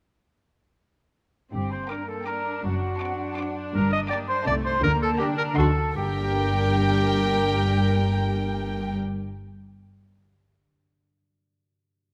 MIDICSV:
0, 0, Header, 1, 10, 480
1, 0, Start_track
1, 0, Key_signature, -2, "minor"
1, 0, Tempo, 368777
1, 1988, Time_signature, 3, 2, 24, 8
1, 6772, Tempo, 373832
1, 15678, End_track
2, 0, Start_track
2, 0, Title_t, "Violin section"
2, 0, Program_c, 0, 48
2, 2476, Note_on_c, 0, 86, 48
2, 2836, Note_off_c, 0, 86, 0
2, 2960, Note_on_c, 0, 86, 51
2, 3316, Note_off_c, 0, 86, 0
2, 3921, Note_on_c, 0, 86, 52
2, 4275, Note_off_c, 0, 86, 0
2, 4376, Note_on_c, 0, 86, 61
2, 4740, Note_off_c, 0, 86, 0
2, 5331, Note_on_c, 0, 86, 68
2, 5687, Note_off_c, 0, 86, 0
2, 5810, Note_on_c, 0, 81, 74
2, 6166, Note_off_c, 0, 81, 0
2, 6772, Note_on_c, 0, 82, 71
2, 7127, Note_off_c, 0, 82, 0
2, 7252, Note_on_c, 0, 84, 78
2, 7616, Note_off_c, 0, 84, 0
2, 7740, Note_on_c, 0, 79, 73
2, 11571, Note_off_c, 0, 79, 0
2, 15678, End_track
3, 0, Start_track
3, 0, Title_t, "Flute section"
3, 0, Program_c, 1, 73
3, 1989, Note_on_c, 1, 79, 57
3, 2214, Note_off_c, 1, 79, 0
3, 2237, Note_on_c, 1, 84, 52
3, 2475, Note_on_c, 1, 82, 47
3, 2476, Note_off_c, 1, 84, 0
3, 2716, Note_off_c, 1, 82, 0
3, 2716, Note_on_c, 1, 81, 58
3, 2794, Note_off_c, 1, 81, 0
3, 2938, Note_on_c, 1, 82, 53
3, 3418, Note_off_c, 1, 82, 0
3, 3432, Note_on_c, 1, 78, 57
3, 4607, Note_off_c, 1, 78, 0
3, 4869, Note_on_c, 1, 82, 78
3, 5091, Note_off_c, 1, 82, 0
3, 5097, Note_on_c, 1, 87, 74
3, 5175, Note_off_c, 1, 87, 0
3, 5325, Note_on_c, 1, 86, 65
3, 5403, Note_off_c, 1, 86, 0
3, 5569, Note_on_c, 1, 84, 78
3, 5805, Note_off_c, 1, 84, 0
3, 5817, Note_on_c, 1, 86, 86
3, 5895, Note_off_c, 1, 86, 0
3, 6039, Note_on_c, 1, 84, 82
3, 6280, Note_off_c, 1, 84, 0
3, 6286, Note_on_c, 1, 82, 96
3, 6528, Note_off_c, 1, 82, 0
3, 6540, Note_on_c, 1, 81, 78
3, 6770, Note_off_c, 1, 81, 0
3, 6773, Note_on_c, 1, 79, 77
3, 7005, Note_off_c, 1, 79, 0
3, 7020, Note_on_c, 1, 82, 84
3, 7256, Note_off_c, 1, 82, 0
3, 7265, Note_on_c, 1, 81, 70
3, 7735, Note_off_c, 1, 81, 0
3, 7741, Note_on_c, 1, 79, 66
3, 11571, Note_off_c, 1, 79, 0
3, 15678, End_track
4, 0, Start_track
4, 0, Title_t, "Violin section"
4, 0, Program_c, 2, 48
4, 2451, Note_on_c, 2, 79, 45
4, 2460, Note_on_c, 2, 82, 47
4, 2822, Note_off_c, 2, 79, 0
4, 2827, Note_off_c, 2, 82, 0
4, 2927, Note_on_c, 2, 79, 44
4, 2933, Note_on_c, 2, 82, 46
4, 3298, Note_off_c, 2, 79, 0
4, 3302, Note_off_c, 2, 82, 0
4, 3898, Note_on_c, 2, 81, 52
4, 3903, Note_on_c, 2, 84, 49
4, 4263, Note_off_c, 2, 81, 0
4, 4266, Note_off_c, 2, 84, 0
4, 4373, Note_on_c, 2, 81, 51
4, 4378, Note_on_c, 2, 84, 50
4, 4738, Note_off_c, 2, 81, 0
4, 4740, Note_off_c, 2, 84, 0
4, 5346, Note_on_c, 2, 82, 69
4, 5356, Note_on_c, 2, 79, 65
4, 5695, Note_off_c, 2, 82, 0
4, 5701, Note_off_c, 2, 79, 0
4, 5813, Note_on_c, 2, 81, 66
4, 5817, Note_on_c, 2, 75, 68
4, 6168, Note_off_c, 2, 81, 0
4, 6170, Note_off_c, 2, 75, 0
4, 6767, Note_on_c, 2, 79, 71
4, 6774, Note_off_c, 2, 79, 0
4, 6774, Note_on_c, 2, 79, 66
4, 7128, Note_off_c, 2, 79, 0
4, 7234, Note_on_c, 2, 78, 66
4, 7236, Note_on_c, 2, 75, 61
4, 7606, Note_off_c, 2, 78, 0
4, 7607, Note_off_c, 2, 75, 0
4, 7725, Note_on_c, 2, 70, 77
4, 11563, Note_off_c, 2, 70, 0
4, 15678, End_track
5, 0, Start_track
5, 0, Title_t, "Clarinet"
5, 0, Program_c, 3, 71
5, 1979, Note_on_c, 3, 67, 64
5, 2208, Note_off_c, 3, 67, 0
5, 2235, Note_on_c, 3, 72, 63
5, 2469, Note_on_c, 3, 70, 57
5, 2488, Note_off_c, 3, 72, 0
5, 2708, Note_on_c, 3, 69, 63
5, 2728, Note_off_c, 3, 70, 0
5, 2938, Note_off_c, 3, 69, 0
5, 2945, Note_on_c, 3, 70, 65
5, 3422, Note_off_c, 3, 70, 0
5, 3433, Note_on_c, 3, 66, 69
5, 4608, Note_off_c, 3, 66, 0
5, 4868, Note_on_c, 3, 70, 76
5, 5090, Note_off_c, 3, 70, 0
5, 5109, Note_on_c, 3, 75, 94
5, 5215, Note_off_c, 3, 75, 0
5, 5338, Note_on_c, 3, 74, 83
5, 5446, Note_off_c, 3, 74, 0
5, 5585, Note_on_c, 3, 72, 91
5, 5813, Note_off_c, 3, 72, 0
5, 5819, Note_on_c, 3, 74, 100
5, 5925, Note_off_c, 3, 74, 0
5, 6059, Note_on_c, 3, 72, 91
5, 6283, Note_off_c, 3, 72, 0
5, 6291, Note_on_c, 3, 70, 100
5, 6399, Note_off_c, 3, 70, 0
5, 6536, Note_on_c, 3, 69, 97
5, 6643, Note_off_c, 3, 69, 0
5, 6749, Note_on_c, 3, 67, 84
5, 6861, Note_off_c, 3, 67, 0
5, 6994, Note_on_c, 3, 70, 96
5, 7065, Note_off_c, 3, 70, 0
5, 7158, Note_on_c, 3, 70, 60
5, 7245, Note_on_c, 3, 69, 90
5, 7264, Note_off_c, 3, 70, 0
5, 7735, Note_off_c, 3, 69, 0
5, 7745, Note_on_c, 3, 67, 80
5, 11573, Note_off_c, 3, 67, 0
5, 15678, End_track
6, 0, Start_track
6, 0, Title_t, "Harp"
6, 0, Program_c, 4, 46
6, 1976, Note_on_c, 4, 43, 46
6, 2228, Note_on_c, 4, 58, 37
6, 2713, Note_on_c, 4, 62, 40
6, 2950, Note_on_c, 4, 74, 39
6, 3424, Note_on_c, 4, 42, 50
6, 3451, Note_off_c, 4, 43, 0
6, 3456, Note_off_c, 4, 58, 0
6, 3674, Note_on_c, 4, 60, 35
6, 3911, Note_on_c, 4, 69, 41
6, 4143, Note_on_c, 4, 72, 45
6, 4374, Note_off_c, 4, 74, 0
6, 4389, Note_on_c, 4, 74, 50
6, 4603, Note_off_c, 4, 72, 0
6, 4618, Note_on_c, 4, 72, 50
6, 4850, Note_on_c, 4, 43, 55
6, 4883, Note_off_c, 4, 72, 0
6, 4884, Note_off_c, 4, 42, 0
6, 4889, Note_off_c, 4, 69, 0
6, 4890, Note_off_c, 4, 60, 0
6, 5096, Note_on_c, 4, 58, 48
6, 5326, Note_on_c, 4, 67, 51
6, 5563, Note_on_c, 4, 70, 59
6, 5799, Note_on_c, 4, 48, 75
6, 5824, Note_off_c, 4, 43, 0
6, 5825, Note_off_c, 4, 67, 0
6, 5825, Note_off_c, 4, 70, 0
6, 5828, Note_off_c, 4, 58, 0
6, 5831, Note_off_c, 4, 74, 0
6, 5833, Note_off_c, 4, 62, 0
6, 6037, Note_on_c, 4, 63, 50
6, 6045, Note_on_c, 4, 69, 57
6, 6279, Note_on_c, 4, 50, 70
6, 6303, Note_off_c, 4, 48, 0
6, 6305, Note_off_c, 4, 63, 0
6, 6306, Note_off_c, 4, 69, 0
6, 6517, Note_on_c, 4, 62, 50
6, 6757, Note_on_c, 4, 70, 57
6, 7229, Note_off_c, 4, 50, 0
6, 7245, Note_on_c, 4, 50, 68
6, 7263, Note_off_c, 4, 70, 0
6, 7499, Note_on_c, 4, 63, 48
6, 7502, Note_on_c, 4, 66, 50
6, 7740, Note_on_c, 4, 43, 52
6, 7754, Note_off_c, 4, 50, 0
6, 7759, Note_off_c, 4, 66, 0
6, 7760, Note_off_c, 4, 63, 0
6, 7828, Note_on_c, 4, 55, 50
6, 7921, Note_on_c, 4, 58, 53
6, 7995, Note_off_c, 4, 62, 0
6, 8010, Note_on_c, 4, 62, 59
6, 8101, Note_on_c, 4, 67, 53
6, 8190, Note_on_c, 4, 74, 53
6, 12514, Note_off_c, 4, 55, 0
6, 12560, Note_off_c, 4, 58, 0
6, 12605, Note_off_c, 4, 62, 0
6, 12650, Note_off_c, 4, 67, 0
6, 12694, Note_off_c, 4, 74, 0
6, 12747, Note_off_c, 4, 43, 0
6, 15678, End_track
7, 0, Start_track
7, 0, Title_t, "Viola section"
7, 0, Program_c, 5, 48
7, 1980, Note_on_c, 5, 60, 48
7, 2435, Note_off_c, 5, 60, 0
7, 2467, Note_on_c, 5, 58, 42
7, 2954, Note_on_c, 5, 62, 56
7, 2955, Note_off_c, 5, 58, 0
7, 3894, Note_off_c, 5, 62, 0
7, 3912, Note_on_c, 5, 62, 67
7, 5776, Note_off_c, 5, 62, 0
7, 5815, Note_on_c, 5, 57, 68
7, 6282, Note_off_c, 5, 57, 0
7, 6300, Note_on_c, 5, 58, 73
7, 6774, Note_off_c, 5, 58, 0
7, 6777, Note_on_c, 5, 62, 84
7, 7253, Note_off_c, 5, 62, 0
7, 7258, Note_on_c, 5, 66, 69
7, 7355, Note_off_c, 5, 66, 0
7, 7750, Note_on_c, 5, 67, 65
7, 11576, Note_off_c, 5, 67, 0
7, 15678, End_track
8, 0, Start_track
8, 0, Title_t, "French horn section"
8, 0, Program_c, 6, 60
8, 2469, Note_on_c, 6, 62, 44
8, 2476, Note_on_c, 6, 58, 36
8, 2644, Note_off_c, 6, 62, 0
8, 2650, Note_off_c, 6, 58, 0
8, 2946, Note_on_c, 6, 62, 43
8, 2956, Note_on_c, 6, 58, 39
8, 3122, Note_off_c, 6, 62, 0
8, 3129, Note_off_c, 6, 58, 0
8, 3877, Note_on_c, 6, 60, 46
8, 3888, Note_on_c, 6, 62, 45
8, 4058, Note_off_c, 6, 60, 0
8, 4067, Note_off_c, 6, 62, 0
8, 4359, Note_on_c, 6, 62, 52
8, 4368, Note_on_c, 6, 60, 48
8, 4539, Note_off_c, 6, 62, 0
8, 4546, Note_off_c, 6, 60, 0
8, 5339, Note_on_c, 6, 58, 57
8, 5342, Note_on_c, 6, 62, 55
8, 5509, Note_off_c, 6, 58, 0
8, 5512, Note_off_c, 6, 62, 0
8, 5798, Note_on_c, 6, 63, 56
8, 5806, Note_on_c, 6, 57, 63
8, 5974, Note_off_c, 6, 63, 0
8, 5979, Note_off_c, 6, 57, 0
8, 6760, Note_on_c, 6, 62, 70
8, 6770, Note_on_c, 6, 55, 62
8, 6935, Note_off_c, 6, 62, 0
8, 6942, Note_off_c, 6, 55, 0
8, 7247, Note_on_c, 6, 63, 58
8, 7248, Note_on_c, 6, 54, 61
8, 7424, Note_off_c, 6, 63, 0
8, 7425, Note_off_c, 6, 54, 0
8, 7739, Note_on_c, 6, 62, 62
8, 7743, Note_on_c, 6, 58, 56
8, 11571, Note_off_c, 6, 62, 0
8, 11572, Note_off_c, 6, 58, 0
8, 15678, End_track
9, 0, Start_track
9, 0, Title_t, "Cello section"
9, 0, Program_c, 7, 48
9, 1967, Note_on_c, 7, 43, 56
9, 2360, Note_off_c, 7, 43, 0
9, 3434, Note_on_c, 7, 42, 59
9, 3813, Note_off_c, 7, 42, 0
9, 4866, Note_on_c, 7, 43, 83
9, 5243, Note_off_c, 7, 43, 0
9, 5809, Note_on_c, 7, 48, 74
9, 6188, Note_off_c, 7, 48, 0
9, 6289, Note_on_c, 7, 50, 84
9, 6669, Note_off_c, 7, 50, 0
9, 7249, Note_on_c, 7, 50, 76
9, 7637, Note_off_c, 7, 50, 0
9, 7745, Note_on_c, 7, 43, 74
9, 11573, Note_off_c, 7, 43, 0
9, 15678, End_track
10, 0, Start_track
10, 0, Title_t, "Double bass section"
10, 0, Program_c, 8, 48
10, 1980, Note_on_c, 8, 31, 60
10, 2367, Note_off_c, 8, 31, 0
10, 3420, Note_on_c, 8, 30, 59
10, 3806, Note_off_c, 8, 30, 0
10, 4873, Note_on_c, 8, 31, 73
10, 5247, Note_off_c, 8, 31, 0
10, 5818, Note_on_c, 8, 36, 74
10, 6193, Note_off_c, 8, 36, 0
10, 6301, Note_on_c, 8, 38, 85
10, 6675, Note_off_c, 8, 38, 0
10, 7248, Note_on_c, 8, 38, 82
10, 7636, Note_off_c, 8, 38, 0
10, 7747, Note_on_c, 8, 31, 73
10, 11574, Note_off_c, 8, 31, 0
10, 15678, End_track
0, 0, End_of_file